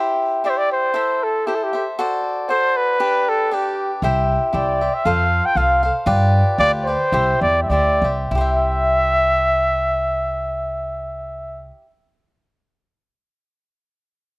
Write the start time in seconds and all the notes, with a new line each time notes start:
Already playing: E4 G4 C5 E5
0.44 E4 G4 C5 D5 E5
0.50 C5
0.57 D5
0.72 C5
0.94 E4 A4 C5 E5
1.23 A4
1.46 E4 G4 A4 C5 E5
1.55 A4
1.63 G4
1.73 A4 C5 E5
1.99 F#4 A4 C5 D5
2.49 F#4 A4 C5 D5
2.77 B4
3.00 D4 G4 B4 D5
3.29 A4
3.51 D4 G4 B4 D5
4.02 C2 E4 G4 C5 E5
4.53 C2 E4 G4 C5 D5 E5
4.81 G4 C5 E5
4.94 E5
5.05 F2 F4 A4 C5 F5
5.45 G5
5.55 C2 F4 A4 C5 F5
5.83 A4 C5 F5
6.06 G2 F4 G4 B4 D5
6.58 D2 F4 G4 B4 D5
6.84 C5 D5
6.89 G4 B4
7.12 C2 E4 G4 C5 E5
7.41 E2 D5
7.63 E5
7.69 D2 E4 G4 C5 D5 E5
8.02 C2 G4 C5 E5
8.31 C2 E4 G4 E5
8.38 C5 E5